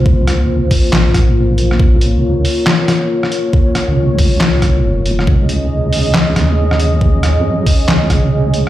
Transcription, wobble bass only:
X:1
M:4/4
L:1/16
Q:"Swing 16ths" 1/4=138
K:Bbm
V:1 name="Wobble bass" clef=bass
C,,3 D,,3 z2 B,,,2 B,,,6- | B,,,3 D,,3 z8 z2 | z3 D,,4- D,, C,,4 F,,,4 | D,,8- D,,2 E,,6- |
E,,3 F,,3 z2 D,,2 D,,6 |]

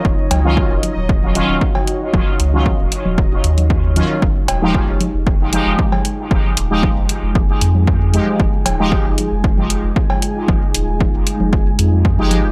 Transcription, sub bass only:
X:1
M:4/4
L:1/16
Q:1/4=115
K:Fphr
V:1 name="Sub bass" clef=bass
E,,, z D,,2 z E,,, z E,,,3 z E,,, z4 | E,,, z D,,2 z E,,, z E,,,2 z E,,4 z2 | F,,, z E,,,2 z F,,, z F,,,3 z F,,, z4 | F,,, z E,,,2 z F,,, z F,,,2 z F,,4 z2 |
F,,, z E,,,2 z F,,, z F,,,3 z F,,, z4 | F,,, z E,,,2 z F,,, z F,,,2 z F,,3 F,,, A,,, E,,, |]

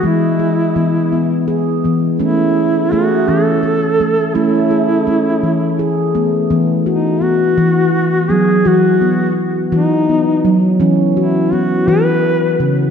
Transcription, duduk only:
X:1
M:6/8
L:1/8
Q:3/8=56
K:Bmix
V:1 name="Duduk"
E4 z2 | E2 F A3 | E4 z2 | z D F3 G |
F2 z D2 z | z E F B2 z |]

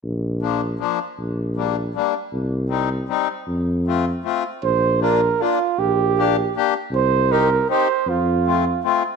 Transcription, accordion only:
X:1
M:3/4
L:1/8
Q:"Swing" 1/4=157
K:Bb
V:1 name="Accordion"
z2 [F,B,D] z [F,B,D] z | z2 [G,B,D] z [G,B,D] z | z2 [G,CE] z [G,CE] z | z2 [A,CF] z [A,CF] z |
z2 [B,DF] z [B,DF] z | z2 [B,DG] z [B,DG] z | z2 [CEG] z [CEG] z | z2 [A,CF] z [A,CF] z |]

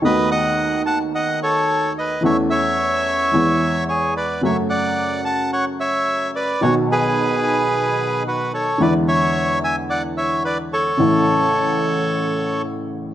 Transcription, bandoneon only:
X:1
M:4/4
L:1/8
Q:1/4=110
K:A
V:1 name="Bandoneon"
[B^d] [df]2 [fa] [df] [Ac]2 [Bd] | [ce] [ce]4- [ce] [Gc] [Bd] | [ce] [df]2 [fa] [cf] [ce]2 [Bd] | [Fc] [GB]4- [GB] [FB] [Ac] |
[Bd] [ce]2 [eg] [df] [ce] [Bd] [Ac]- | [Ac]6 z2 |]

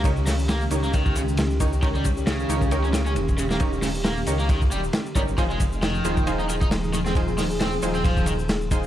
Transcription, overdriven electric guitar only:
X:1
M:4/4
L:1/16
Q:"Swing 16ths" 1/4=135
K:Ebmix
V:1 name="Overdriven electric guitar" clef=bass
z2 D, z B, z2 B, E,2 D, z4 z | E, G, z2 D,4 z D D, D z2 D, B, | z2 D, z B, z2 B, E, z G, z3 G, z | F, A, z2 E,4 z E E, E z2 E, C |
z2 E, z C z2 C F,2 E, z4 z |]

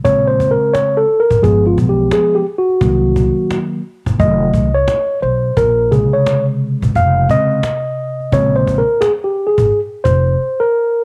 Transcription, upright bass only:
X:1
M:4/4
L:1/16
Q:"Swing 16ths" 1/4=87
K:Fm
V:1 name="Upright bass" clef=bass
B,,,3 z4 A,,, G,,,2 =B,,,2 z4 | C,,3 z4 _G,,, F,,,2 C,,2 z2 _C,,2 | B,,,3 z4 A,,, F,,,2 z6 | B,,,3 z4 A,,, z2 F,,,2 z4 |]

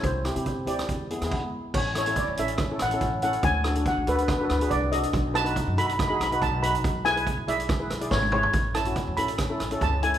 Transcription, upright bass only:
X:1
M:4/4
L:1/16
Q:1/4=141
K:A
V:1 name="Upright bass" clef=bass
=C,,3 =C,3 D,,2 E,,3 E,, z4 | A,,,4- A,,, E,, A,,,4 A,,,2 A,,,4 | D,,4- D,, A,,, D,,4 D,,2 =C,,4 | B,,,4- B,,, F,, B,,,4 B,,,2 B,,,4 |
B,,,4- B,,, B,,, B,,,4 B,,,2 G,,,4 | A,,,4- A,,, E,, A,,,4 A,,,2 C,,4 |]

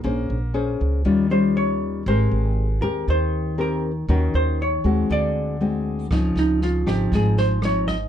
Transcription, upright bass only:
X:1
M:4/4
L:1/8
Q:1/4=119
K:Ab
V:1 name="Upright bass" clef=bass
B,,, B,,,2 D,, E,,4 | A,,, A,,,2 E,, E,,4 | E,, E,,2 E,, =D,,4 | D,, D,,2 A,,, A,,,4 |]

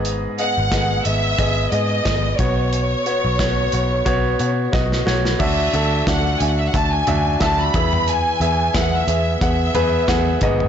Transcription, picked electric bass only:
X:1
M:4/4
L:1/16
Q:"Swing 16ths" 1/4=90
K:E
V:1 name="Picked electric bass" clef=bass
G,,,2 z G,,, G,,,2 G,,,2 G,,,2 G,,2 G,,,2 B,,,2- | B,,,2 z B,,, B,,,2 B,,,2 B,,,2 B,,2 B,,,2 B,,,2 | =D,,2 D,,2 D,,2 D,,2 D,,2 D,,2 D,,2 E,,2- | E,,2 E,,2 E,,2 E,,2 E,,2 E,,2 E,,2 G,,,2 |]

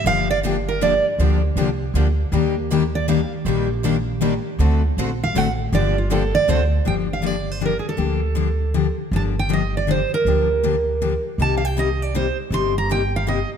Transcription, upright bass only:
X:1
M:3/4
L:1/8
Q:"Swing" 1/4=159
K:Gm
V:1 name="Upright bass" clef=bass
G,,,6 | D,,2 C,,2 D,,2 | E,,6 | B,,,6 |
D,,2 B,,,2 A,,,2 | G,,,4 D,,2 | G,,,6 | D,,6 |
G,,,6 | D,,6 | C,,6 | G,,,6 |]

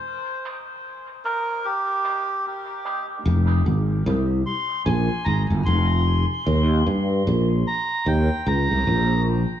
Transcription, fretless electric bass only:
X:1
M:4/4
L:1/16
Q:"Swing 16ths" 1/4=75
K:Fm
V:1 name="Fretless electric bass" clef=bass
z16 | F,,,2 A,,,2 C,,2 z2 B,,, z A,,, G,,, F,,,3 z | E,,2 G,,2 B,,,2 z2 E,, z D,, C,, B,,,3 z |]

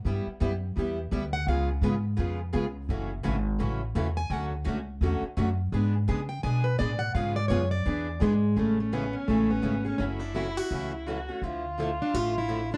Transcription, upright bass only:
X:1
M:4/4
L:1/8
Q:"Swing" 1/4=169
K:F#m
V:1 name="Upright bass" clef=bass
=G,, z F,,2 E,,2 D,,2 | C,,2 G,,2 ^E,,2 C,,2 | F,,,2 G,,,2 A,,,2 E,,2 | D,,2 C,,2 E,, z F,,2 |
G,,2 C,2 B,,2 A,,2 | G,,2 F,,2 E,,2 G,,2 | [K:A] A,,,4 A,,,2 G,,,2 | F,,,4 C,,4 |
D,,4 A,,,4 |]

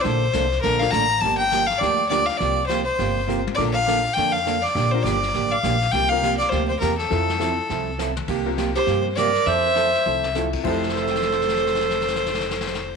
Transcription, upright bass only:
X:1
M:4/4
L:1/8
Q:"Swing" 1/4=204
K:F
V:1 name="Upright bass" clef=bass
B,,,2 C,,2 B,,,2 A,,,2 | G,,,4 D,,4 | C,,4 G,,,4 | B,,,4 F,,4 |
B,,,2 G,,,2 A,,,2 B,,,2 | C,,4 D,,2 E,,2 | F,,4 C,,4 | C,,4 G,,4 |
F,,4 C,,4 | F,,,8- | F,,,8 |]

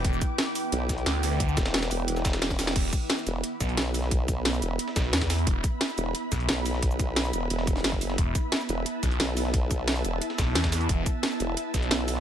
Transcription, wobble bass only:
X:1
M:4/4
L:1/8
Q:1/4=177
K:Em
V:1 name="Wobble bass" clef=bass
z4 B,,,2 z2 | z E,,,2 E,,, E,,,3 E,,, | z3 E,,, z2 B,,,2- | B,,,3 E,,, z4 |
z3 E,,, z2 B,,,2- | B,,,3 E,,, E,,,2 F,,,2 | z3 E,,, z2 B,,,2- | B,,,3 E,,, z4 |
z3 E,,, z2 B,,,2 |]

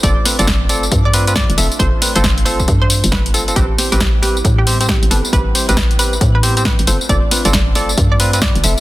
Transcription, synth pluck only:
X:1
M:4/4
L:1/16
Q:"Swing 16ths" 1/4=136
K:Gmix
V:1 name="Synth pluck"
d2 z d2 z d2 z d2 z d z e z | c2 z c2 z c2 z c2 z B z A z | G2 z G2 z G2 z G2 z G z A z | B2 z B2 z B2 z B2 z B z c z |
d2 z d2 z d2 z d2 z d z e z |]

